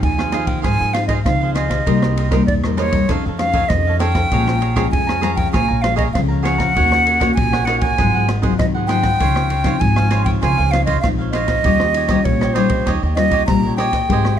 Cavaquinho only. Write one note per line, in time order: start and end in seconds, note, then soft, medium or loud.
0.18 0.32 G#4 soft
0.18 0.32 C5 soft
0.18 0.32 F5 soft
0.32 0.47 F4 medium
0.32 0.47 G#4 medium
0.32 0.46 C5 medium
0.32 0.46 F5 medium
0.47 0.62 G#4 soft
0.47 0.62 C5 soft
0.47 0.62 F5 soft
0.62 0.77 F4 medium
0.62 0.78 G#4 medium
0.62 0.78 C5 medium
0.62 0.78 F5 medium
0.79 1.08 G#4 soft
0.79 1.08 C5 soft
0.79 1.09 F5 soft
1.09 1.18 F4 medium
1.09 1.19 G#4 medium
1.09 1.19 C5 medium
1.09 1.19 F5 medium
1.41 1.54 G#4 soft
1.41 1.55 C5 soft
1.41 1.55 F5 soft
1.55 1.69 F4 medium
1.55 1.70 G#4 medium
1.55 1.70 C5 medium
1.55 1.68 F5 medium
1.69 1.86 G#4 soft
1.69 1.85 C5 soft
1.69 1.84 F5 soft
1.86 2.16 D#4 medium
1.86 2.16 A#4 medium
1.86 2.17 C5 medium
1.86 2.17 D#5 medium
2.17 2.30 D#4 soft
2.17 2.30 A#4 soft
2.17 2.31 C5 medium
2.17 2.31 D#5 soft
2.31 2.41 D#4 medium
2.31 2.41 A#4 medium
2.31 2.41 C5 medium
2.31 2.42 D#5 medium
2.63 2.77 A#4 soft
2.63 2.78 C5 soft
2.63 2.77 D#5 soft
2.77 2.92 D#4 medium
2.77 2.93 A#4 medium
2.77 2.92 C5 medium
2.77 2.91 D#5 medium
2.92 3.08 A#4 soft
2.92 3.08 C5 soft
2.92 3.07 D#5 soft
3.09 3.23 D#4 medium
3.09 3.23 A4 medium
3.09 3.24 C#5 medium
3.09 3.24 F5 medium
3.25 3.52 A4 soft
3.25 3.53 C#5 soft
3.25 3.53 F5 soft
3.54 3.63 D#4 medium
3.54 3.63 A4 medium
3.54 3.64 C#5 medium
3.54 3.64 F5 medium
3.87 3.99 A4 soft
3.87 3.99 C#5 soft
3.87 4.00 F5 medium
3.99 4.14 D#4 medium
3.99 4.15 A4 medium
3.99 4.15 C#5 medium
3.99 4.13 F5 medium
4.15 4.31 A4 soft
4.15 4.30 C#5 soft
4.15 4.30 F5 medium
4.32 4.60 G#4 medium
4.32 4.61 C#5 medium
4.32 4.61 F5 medium
4.32 4.62 A#5 medium
4.61 4.75 G#4 soft
4.61 4.75 C#5 medium
4.61 4.76 F5 medium
4.61 4.76 A#5 soft
4.76 4.86 G#4 medium
4.76 4.86 C#5 medium
4.76 4.86 F5 medium
4.76 4.87 A#5 medium
5.07 5.21 C#5 soft
5.07 5.22 F5 soft
5.07 5.22 A#5 soft
5.21 5.37 G#4 medium
5.21 5.37 C#5 medium
5.21 5.37 F5 medium
5.21 5.35 A#5 medium
5.37 5.52 C#5 soft
5.37 5.53 F5 soft
5.37 5.52 A#5 soft
5.53 5.68 G#4 medium
5.53 5.68 C#5 medium
5.53 5.68 F5 medium
5.53 5.67 A#5 medium
5.68 5.96 C#5 soft
5.68 5.96 F5 soft
5.68 5.96 A#5 soft
5.96 6.07 G#4 medium
5.96 6.07 C#5 medium
5.96 6.08 F5 medium
5.96 6.08 A#5 medium
6.28 6.42 C#5 soft
6.28 6.43 F5 soft
6.28 6.44 A#5 soft
6.43 6.58 G#4 medium
6.43 6.59 C#5 medium
6.43 6.58 F5 medium
6.43 6.57 A#5 medium
6.58 6.75 C#5 soft
6.58 6.75 F5 soft
6.58 6.74 A#5 medium
6.75 7.04 D#4 medium
6.75 7.05 A#4 medium
6.75 7.06 C#5 medium
6.75 7.06 F#5 medium
7.05 7.19 D#4 soft
7.05 7.19 A#4 soft
7.05 7.20 C#5 soft
7.05 7.20 F#5 soft
7.20 7.30 D#4 medium
7.20 7.30 A#4 medium
7.20 7.31 C#5 medium
7.20 7.31 F#5 medium
7.52 7.67 A#4 soft
7.52 7.67 C#5 soft
7.52 7.67 F#5 soft
7.67 7.82 D#4 medium
7.67 7.82 A#4 medium
7.67 7.82 C#5 medium
7.67 7.81 F#5 medium
7.82 7.98 A#4 soft
7.82 7.97 C#5 soft
7.82 7.97 F#5 soft
7.98 8.13 D#4 medium
7.98 8.13 G#4 medium
7.98 8.14 C5 medium
7.98 8.13 F#5 medium
8.15 8.42 G#4 soft
8.15 8.42 C5 soft
8.15 8.42 F#5 soft
8.42 8.52 D#4 medium
8.42 8.53 G#4 medium
8.42 8.53 C5 medium
8.42 8.53 F#5 medium
8.74 8.88 G#4 soft
8.74 8.88 C5 soft
8.74 8.89 F#5 soft
8.88 9.03 D#4 medium
8.88 9.03 G#4 medium
8.88 9.03 C5 medium
8.88 9.01 F#5 medium
9.02 9.19 G#4 soft
9.02 9.19 C5 soft
9.02 9.18 F#5 soft
9.20 9.48 F4 medium
9.20 9.48 C5 medium
9.20 9.50 C#5 medium
9.20 9.50 F5 medium
9.49 9.63 F4 soft
9.49 9.64 C5 soft
9.49 9.65 C#5 soft
9.49 9.65 F5 soft
9.65 9.75 F4 medium
9.65 9.75 C5 medium
9.65 9.75 C#5 medium
9.65 9.76 F5 medium
9.96 10.10 C5 soft
9.96 10.10 C#5 soft
9.96 10.11 F5 soft
10.10 10.26 F4 medium
10.10 10.26 C5 medium
10.10 10.26 C#5 medium
10.10 10.24 F5 medium
10.26 10.42 C5 soft
10.26 10.42 C#5 soft
10.26 10.41 F5 soft
10.42 10.57 F4 medium
10.42 10.57 C5 medium
10.42 10.58 C#5 medium
10.42 10.56 F5 medium
10.57 10.86 C5 soft
10.57 10.86 C#5 soft
10.57 10.86 F5 soft
10.86 10.97 F4 medium
10.86 10.97 C5 medium
10.86 10.97 C#5 medium
10.86 10.97 F5 medium
11.18 11.33 C5 soft
11.18 11.33 C#5 soft
11.18 11.33 F5 soft
11.33 11.48 F4 medium
11.33 11.49 C5 medium
11.33 11.48 C#5 medium
11.33 11.47 F5 medium
11.48 11.64 C5 soft
11.48 11.64 C#5 soft
11.48 11.63 F5 soft
11.64 11.94 D#4 medium
11.64 11.94 G4 medium
11.64 11.95 C#5 medium
11.64 11.95 D#5 medium
11.95 12.07 D#4 soft
11.95 12.08 G4 soft
11.95 12.09 C#5 soft
11.95 12.09 D#5 soft
12.09 12.19 D#4 medium
12.09 12.20 G4 medium
12.09 12.20 C#5 medium
12.09 12.20 D#5 medium
12.41 12.54 G4 soft
12.41 12.55 C#5 soft
12.41 12.55 D#5 medium
12.55 12.70 D#4 medium
12.55 12.70 G4 medium
12.55 12.70 C#5 medium
12.55 12.69 D#5 medium
12.70 12.85 G4 soft
12.70 12.86 C#5 soft
12.70 12.85 D#5 soft
12.86 13.01 D#4 medium
12.86 13.01 G4 medium
12.86 13.02 C#5 medium
12.86 13.01 D#5 medium
13.02 13.31 G4 soft
13.02 13.32 C#5 soft
13.02 13.32 D#5 soft
13.31 13.41 D#4 medium
13.31 13.42 G4 medium
13.31 13.42 C#5 medium
13.31 13.42 D#5 medium
13.64 13.78 G4 soft
13.64 13.78 C#5 soft
13.64 13.78 D#5 soft
13.78 13.93 D#4 medium
13.78 13.93 G4 medium
13.78 13.93 C#5 medium
13.78 13.92 D#5 medium
13.93 14.09 G4 soft
13.93 14.09 C#5 soft
13.93 14.08 D#5 medium
14.11 14.39 G4 medium
14.11 14.39 C5 medium
14.11 14.39 D#5 medium
14.11 14.39 G#5 medium